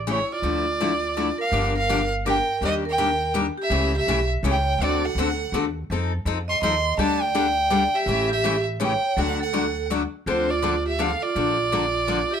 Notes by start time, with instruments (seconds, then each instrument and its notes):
Already playing: upright bass A1
0.07 steel-string acoustic guitar C#3 E3 A3 C#4 G4, vibraphone E4
0.11 violin C#5
0.32 vibraphone F4, violin D5
0.42 upright bass D2, steel-string acoustic guitar D3 F3 A3 E4
0.80 steel-string acoustic guitar D3 F3 A3 E4
1.17 steel-string acoustic guitar D3 F3 A3 E4
1.38 vibraphone A#4, violin F5
1.52 upright bass G1, steel-string acoustic guitar D3 F3 A#3 D4 G4
1.75 vibraphone A#4, violin F5
1.89 steel-string acoustic guitar D3 F3 A#3 D4 G4
2.26 steel-string acoustic guitar D3 F3 A#3 D4 G4, vibraphone A#4, violin G5
2.61 upright bass D#2, steel-string acoustic guitar D#3 G3 A#3 D4 G4, vibraphone G4, violin D#5
2.85 vibraphone A#4
2.90 violin G5
2.98 steel-string acoustic guitar D#3 G3 A#3 D4 G4
3.34 steel-string acoustic guitar D#3 G3 A#3 D4 G4
3.58 vibraphone G4
3.63 violin E5
3.70 upright bass C#2, steel-string acoustic guitar C#3 E3 A3 C#4 G4
3.94 vibraphone G4, violin E5
4.07 upright bass B1, steel-string acoustic guitar C#3 E3 A3 C#4 G4
4.43 upright bass C#2, steel-string acoustic guitar C#3 E3 A3 C#4 G4, vibraphone C#5
4.49 violin G5
4.79 upright bass D2, steel-string acoustic guitar D3 A3 C4 F#4 A4, vibraphone F#4
4.83 violin D5
5.04 vibraphone A4, violin F#5
5.15 upright bass D2, steel-string acoustic guitar D3 A3 C4 F#4 A4
5.52 upright bass D#2, steel-string acoustic guitar D3 A3 C4 F#4 A4
5.90 upright bass F2, steel-string acoustic guitar F3 C4 D#4 A4
6.25 upright bass F2, steel-string acoustic guitar F3 C4 D#4 A4
6.48 vibraphone D#5, violin C6
6.62 upright bass D#2, steel-string acoustic guitar F3 C4 D#4 A4, vibraphone D#5, violin C6
6.98 upright bass D2, steel-string acoustic guitar D3 G3 D4 G4 A4, vibraphone D5, violin A5
7.21 vibraphone D5, violin G5
7.34 steel-string acoustic guitar D3 G3 D4 G4 A4
7.70 steel-string acoustic guitar D3 G3 D4 G4 A4
7.94 vibraphone G4, violin E5
8.06 upright bass A1, steel-string acoustic guitar C#3 E3 A3 C#4 G4
8.29 vibraphone G4, violin E5
8.44 steel-string acoustic guitar C#3 E3 A3 C#4 G4
8.80 steel-string acoustic guitar C#3 E3 A3 C#4 G4, vibraphone C#5, violin G5
9.16 upright bass D2, steel-string acoustic guitar D3 F#3 A3 D4 F#4, vibraphone A4, violin F#5
9.40 vibraphone A4, violin F#5
9.53 steel-string acoustic guitar D3 F#3 A3 D4 F#4
9.90 steel-string acoustic guitar D3 F#3 A3 D4 F#4
10.26 upright bass D2, steel-string acoustic guitar D3 F3 C4 D4 A4, vibraphone F4, violin C5
10.49 vibraphone F4, violin D5
10.62 steel-string acoustic guitar D3 F3 C4 D4 A4
10.85 vibraphone G4, violin E5
10.99 steel-string acoustic guitar D3 F3 C4 D4 A4, vibraphone A4, violin F5
11.22 vibraphone F4, violin D5
11.36 upright bass A#1, steel-string acoustic guitar D3 F3 A#3 D4 A4
11.72 steel-string acoustic guitar D3 F3 A#3 D4 A4
12.07 steel-string acoustic guitar D3 F3 A#3 D4 A4
12.31 vibraphone G4, violin E5